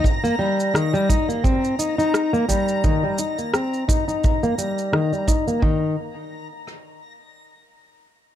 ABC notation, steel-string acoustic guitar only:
X:1
M:4/4
L:1/16
Q:"Swing 16ths" 1/4=86
K:Cm
V:1 name="Steel-string acoustic guitar"
z B, G,2 E, G, E B, C2 E E2 B, G,2 | E, G, E B, C2 E E2 B, G,2 E, G, E B, | E,2 z12 z2 |]